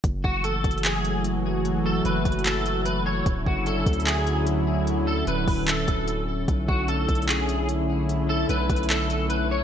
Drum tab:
HH |x-----x--xxxx--x--x-----|x-----x--xxxx--x--x-----|x-----x--xxxx--x--x-----|x-----x--o--x--x--x-----|
CP |------------x-----------|------------x-----------|------------x-----------|------------x-----------|
BD |o--o-----o--------------|---------o--------------|o--o-----o--------------|---------o-----o--------|

HH |x-----x--xxxx--x--x-----|x-----x--xxxx--x--x-----|
CP |------------x-----------|------------x-----------|
BD |o--o-----o--------------|---------o--------------|